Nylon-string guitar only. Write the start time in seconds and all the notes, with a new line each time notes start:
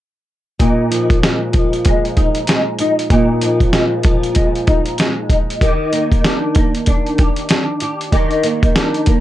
0.59 A#2 D#4
0.91 F3
1.23 G#3
1.53 F3
1.85 G#3
2.16 D#4
2.48 G#3
2.80 D#4
3.10 A#2 D#4
3.42 F3
3.74 G#3
4.04 F3
4.36 G#3
4.67 D#4
4.99 G#3
5.30 D#4
5.61 D#3 G4
5.92 A#3
6.24 D4
6.56 A#3
6.88 D4
7.19 G4
7.50 D4
7.82 G4
8.12 D#3 G4
8.43 A#3
8.77 D4
9.07 A#3